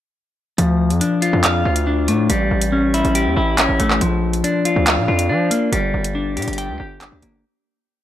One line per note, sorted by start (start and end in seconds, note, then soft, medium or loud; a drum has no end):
0.58 0.92 D2 loud
0.58 1.65 F3 loud
0.58 closed hi-hat medium
0.90 1.01 F2 loud
0.90 closed hi-hat soft
1.01 1.86 D4 medium
1.01 closed hi-hat medium
1.22 1.64 F4 medium
1.22 closed hi-hat medium
1.33 1.64 F2 loud
1.44 2.30 F5 loud
1.44 clap loud
1.44 closed hi-hat medium
1.65 2.10 D2 loud
1.65 2.29 F4 medium
1.76 closed hi-hat medium
1.87 2.30 D4 medium
2.08 2.29 A2 loud
2.08 2.30 A3 medium
2.08 closed hi-hat medium
2.30 2.50 A1 loud
2.30 3.37 G3 medium
2.30 closed hi-hat medium
2.51 3.03 A1 loud
2.62 closed hi-hat medium
2.72 3.57 C#4 medium
2.94 3.35 E4 medium
2.94 closed hi-hat medium
3.05 3.27 A1 loud
3.05 closed hi-hat soft
3.15 4.01 G4 loud
3.15 closed hi-hat medium
3.26 3.36 E2 loud
3.37 3.68 A1 loud
3.37 4.01 E4 medium
3.58 4.01 C#4 medium
3.58 clap loud
3.58 closed hi-hat medium
3.69 3.79 A1 loud
3.79 4.00 A1 loud
3.79 4.01 A3 medium
3.79 closed hi-hat medium
3.90 clap medium
4.01 4.42 A#1 loud
4.01 5.08 F3 medium
4.01 closed hi-hat medium
4.33 closed hi-hat soft
4.44 5.28 D4 medium
4.44 closed hi-hat medium
4.65 5.07 F4 medium
4.65 closed hi-hat medium
4.76 4.99 D2 loud
4.87 5.73 F5 loud
4.87 clap loud
4.87 closed hi-hat medium
4.98 5.08 A#2 loud
5.08 5.31 F2 loud
5.08 5.72 F4 medium
5.19 closed hi-hat medium
5.29 5.50 F3 loud
5.29 5.72 D4 medium
5.51 5.72 A#3 medium
5.51 closed hi-hat medium
5.72 5.93 G1 loud
5.72 6.79 G3 medium
5.72 closed hi-hat medium
5.94 6.38 G1 loud
6.04 closed hi-hat medium
6.15 7.00 D4 medium
6.37 6.47 A#2 loud
6.37 6.79 G4 medium
6.37 closed hi-hat medium
6.42 closed hi-hat medium
6.48 6.71 G1 loud
6.48 closed hi-hat medium
6.53 closed hi-hat medium
6.58 7.44 G5 loud
6.58 closed hi-hat medium
6.69 6.79 D2 loud
6.80 7.11 G1 loud
6.80 7.44 G4 medium
7.01 7.44 D4 medium
7.01 clap loud
7.01 closed hi-hat medium
7.12 7.22 D2 loud
7.22 7.43 G1 loud
7.22 7.44 A#3 medium
7.22 closed hi-hat medium